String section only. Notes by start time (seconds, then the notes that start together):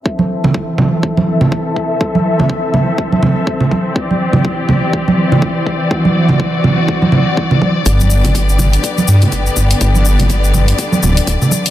0.05 E3 C4 A4 E5
3.95 E3 G4 D5
5.91 F#4
7.86 D3 B3 G4